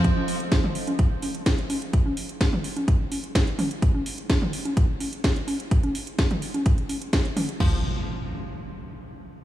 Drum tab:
CC |----------------|----------------|----------------|----------------|
HH |x-oxx-oxx-oxxxox|x-oxx-oxx-oxxxox|x-oxx-oxx-oxxxox|xxoxxxoxxxoxxxox|
SD |----o-------o---|----o-------o---|----o-------o---|----o-------o---|
T2 |-----o----------|-----o--------o-|-----o----------|-----o--------o-|
CG |-o--o--o--o---o-|-o--o--o--o---o-|-o--o--o--o---o-|-o--o--o--o---o-|
BD |o---o---o---o---|o---o---o---o---|o---o---o---o---|o---o---o---o---|

CC |x---------------|
HH |----------------|
SD |----------------|
T2 |----------------|
CG |----------------|
BD |o---------------|